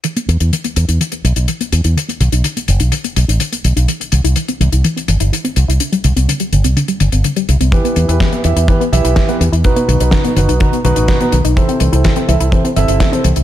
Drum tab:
HH |xxxxxxxxxxxxxxxx|xxxxxxxxxxxxxxxx|xxxxxxxxxxxxxxxx|xxxxxxxxxxxxxxxx|
SD |----------------|----------------|----------------|----------------|
BD |----------------|----------------|----------------|----------------|

HH |xxxxxxxxxxxxxxxx|xxxxxxxxxxxxxxxx|xxxxxxxxxxxxxxxx|
SD |----o-------o---|----o-------o---|----o-------o---|
BD |o---o---o---o---|o---o---o---o---|o---o---o---o---|